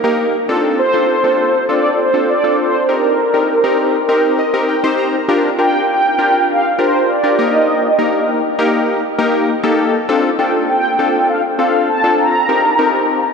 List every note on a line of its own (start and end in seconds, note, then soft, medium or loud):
0.04 0.36 A#3 medium
0.04 0.36 D#4 medium
0.04 0.36 G4 medium
0.04 0.36 A#4 medium
0.49 0.81 C4 medium
0.49 0.81 D4 medium
0.49 0.81 F4 medium
0.49 0.81 A4 medium
0.79 1.65 C5 loud
0.94 1.15 C4 medium
0.94 1.15 D4 medium
0.94 1.15 F4 medium
0.94 1.15 A4 medium
1.24 1.56 C4 medium
1.24 1.56 D4 medium
1.24 1.56 F4 medium
1.24 1.56 A4 medium
1.69 2.01 C4 medium
1.69 2.01 D4 medium
1.69 2.01 F4 medium
1.69 2.01 A4 medium
1.69 2.00 D5 loud
1.99 2.30 C5 loud
2.14 2.35 C4 medium
2.14 2.35 D4 medium
2.14 2.35 F4 medium
2.14 2.35 A4 medium
2.29 2.57 D5 loud
2.44 2.76 C4 medium
2.44 2.76 D4 medium
2.44 2.76 F4 medium
2.44 2.76 A4 medium
2.59 2.90 C5 medium
2.89 3.21 C4 medium
2.89 3.21 D#4 medium
2.89 3.21 G4 medium
2.89 4.95 A#4 loud
2.89 3.21 A#4 medium
3.34 3.55 C4 medium
3.34 3.55 D#4 medium
3.34 3.55 G4 medium
3.34 3.55 A#4 medium
3.64 3.96 C4 medium
3.64 3.96 D#4 medium
3.64 3.96 G4 medium
3.64 3.96 A#4 medium
4.09 4.41 C4 medium
4.09 4.41 D#4 medium
4.09 4.41 G4 medium
4.09 4.41 A#4 medium
4.39 4.67 D#5 medium
4.54 4.75 C4 medium
4.54 4.75 D#4 medium
4.54 4.75 G4 medium
4.54 4.75 A#4 medium
4.69 4.97 G5 medium
4.84 5.16 C4 medium
4.84 5.16 D#4 medium
4.84 5.16 G4 medium
4.84 5.16 C5 loud
4.99 5.27 A#5 medium
5.29 5.50 D4 medium
5.29 5.50 F4 medium
5.29 5.50 G4 medium
5.29 5.50 A#4 medium
5.58 6.01 D4 medium
5.58 6.01 F4 medium
5.58 6.01 G4 medium
5.58 6.01 A#4 medium
5.58 5.88 G5 loud
5.89 6.51 G5 loud
6.19 6.61 D4 medium
6.19 6.61 F4 medium
6.19 6.61 G4 medium
6.19 6.61 A#4 medium
6.49 6.80 F5 loud
6.79 7.11 D4 medium
6.79 7.11 F4 medium
6.79 7.11 G4 medium
6.79 7.11 A#4 medium
6.79 7.10 C5 medium
7.09 7.40 D5 medium
7.24 7.39 D4 medium
7.24 7.39 F4 medium
7.24 7.37 G4 medium
7.24 7.38 A#4 medium
7.39 7.87 A#3 medium
7.39 7.87 D#4 medium
7.39 7.87 G4 medium
7.39 7.87 A#4 medium
7.39 8.55 D#5 medium
7.99 8.41 A#3 medium
7.99 8.41 D#4 medium
7.99 8.41 G4 medium
7.99 8.41 A#4 medium
8.59 9.01 A#3 medium
8.59 9.01 D#4 medium
8.59 9.01 G4 medium
8.59 9.01 A#4 loud
9.18 9.51 A#3 medium
9.18 9.50 D#4 medium
9.18 9.51 G4 medium
9.18 9.51 A#4 loud
9.63 9.96 A#3 medium
9.63 9.96 D#4 medium
9.63 9.96 G4 medium
9.63 9.95 A4 loud
10.09 10.30 C4 medium
10.09 10.30 D4 medium
10.09 10.30 F4 medium
10.09 10.30 A4 loud
10.39 10.81 C4 medium
10.39 10.81 D4 medium
10.39 10.81 F4 medium
10.39 10.81 A4 medium
10.39 10.52 G5 medium
10.69 11.31 G5 loud
10.99 11.41 C4 medium
10.99 11.41 D4 medium
10.99 11.41 F4 medium
10.99 11.41 A4 medium
11.29 11.42 F5 medium
11.59 11.91 C4 medium
11.59 11.91 D4 medium
11.59 11.91 F4 medium
11.59 11.91 A4 medium
11.59 11.87 F5 medium
11.89 12.17 A5 loud
12.04 12.36 C4 medium
12.04 12.36 D4 medium
12.04 12.36 F4 medium
12.04 12.36 A4 medium
12.19 13.33 A#5 loud
12.49 12.70 C4 medium
12.49 12.70 D#4 medium
12.49 12.70 G4 medium
12.49 12.70 A#4 medium
12.79 13.21 C4 medium
12.79 13.21 D#4 medium
12.79 13.21 G4 medium
12.79 13.21 A#4 medium